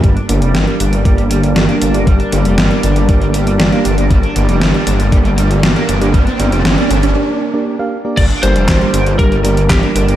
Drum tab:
CC |----------------|----------------|----------------|----------------|
HH |xxxxxxxxxxxxxxxx|xxxxxxxxxxxxxxxx|xxxxxxxxxxxxxxxx|xxxxxxxx--------|
CP |----------------|----------------|----------------|----------------|
SD |----o-------o---|----o-------o---|----o-------o---|----o-----------|
BD |o-------o-------|o-------o-------|o-------o-------|o---------------|

CC |x---------------|
HH |xxxxxxxxxxxxxxxx|
CP |----x-------x---|
SD |----o-------o---|
BD |o---o---o---o---|